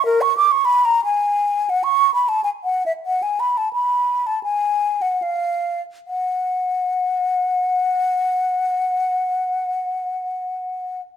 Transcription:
0.06 0.23 A#4 medium
0.21 0.36 C#6 medium
0.37 0.53 D6 medium
0.51 0.67 C#6 medium
0.65 0.87 B5 medium
0.85 1.04 A#5 medium
1.05 1.71 G#5 medium
1.70 1.85 F#5 medium
1.84 2.14 C#6 medium
2.14 2.30 B5 medium
2.29 2.43 A5 medium
2.44 2.50 G#5 medium
2.64 2.85 F#5 medium
2.86 2.92 E5 medium
3.06 3.24 F#5 medium
3.23 3.41 G#5 medium
3.40 3.59 B5 medium
3.58 3.72 A5 medium
3.73 4.28 B5 medium
4.27 4.43 A5 medium
4.43 5.03 G#5 medium
5.02 5.24 F#5 medium
5.22 5.81 F5 medium
6.07 11.01 F#5 medium

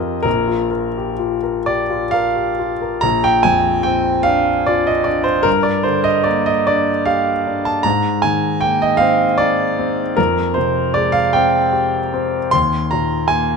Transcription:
0.00 0.22 F2 medium
0.00 0.28 F4 soft
0.00 0.28 G4 soft
0.00 0.23 A#4 soft
0.00 0.25 D#5 medium
0.23 3.00 A#1 medium
0.23 0.69 A#4 medium
0.48 0.87 F4 soft
0.71 1.11 A#4 soft
0.97 1.35 G4 soft
1.19 1.58 F4 soft
1.43 1.81 A#4 soft
1.66 2.04 G4 soft
1.66 2.13 D5 medium
1.90 2.27 F4 soft
2.11 2.50 A#4 soft
2.11 3.02 F5 medium
2.36 2.73 G4 soft
2.59 2.95 F4 soft
2.81 3.03 A#4 soft
3.01 5.42 A#1 medium
3.01 3.23 A#5 medium
3.24 3.45 G5 medium
3.43 4.10 F2 soft
3.43 3.85 G#5 medium
3.83 4.50 C4 soft
3.83 4.25 G5 medium
4.23 4.90 D4 soft
4.23 4.65 F5 medium
4.67 5.31 F4 soft
4.67 4.86 D5 medium
4.87 5.06 D#5 medium
5.04 5.46 D4 soft
5.04 5.25 D5 medium
5.24 5.45 C5 medium
5.43 7.79 G2 medium
5.43 5.65 A#4 medium
5.63 5.85 D5 medium
5.83 6.50 D3 soft
5.83 6.05 C5 medium
6.04 6.26 D#5 medium
6.24 6.90 A#3 soft
6.24 6.45 D5 medium
6.46 6.66 D#5 medium
6.67 7.30 D4 soft
6.67 7.06 D5 medium
7.06 7.69 G4 soft
7.06 7.64 F5 medium
7.47 7.85 D4 soft
7.65 7.85 A5 medium
7.83 10.15 G#2 medium
7.83 8.23 A#5 medium
8.22 8.86 D#3 soft
8.22 8.61 G#5 medium
8.61 9.26 A#3 soft
8.61 8.81 G5 medium
8.82 9.01 D#5 medium
8.97 9.64 C4 soft
8.97 9.39 F5 medium
9.38 10.02 D#4 soft
9.38 10.16 D5 medium
9.79 10.17 C4 soft
10.17 12.49 F2 soft
10.17 10.56 A#4 medium
10.54 11.20 C3 soft
10.54 10.94 C5 medium
10.94 11.58 G#3 soft
10.94 11.14 D5 medium
11.12 11.33 F5 medium
11.33 11.98 C4 soft
11.33 11.73 G5 medium
11.72 12.36 G4 soft
12.13 12.53 C4 soft
12.51 13.57 D#2 medium
12.51 12.92 C6 loud
12.91 13.56 A#2 soft
12.91 13.31 A#5 medium
13.28 13.57 A#3 soft
13.28 13.57 G#5 medium

